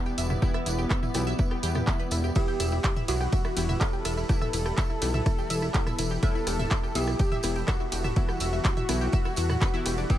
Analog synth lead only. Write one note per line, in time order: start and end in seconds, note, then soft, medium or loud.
0.00 2.37 B3 loud
2.36 2.99 G4 loud
3.08 3.82 F#4 loud
3.81 6.13 A4 loud
6.23 6.97 A4 loud
6.95 7.58 G4 loud
7.68 10.11 F#4 loud
10.10 10.18 G4 loud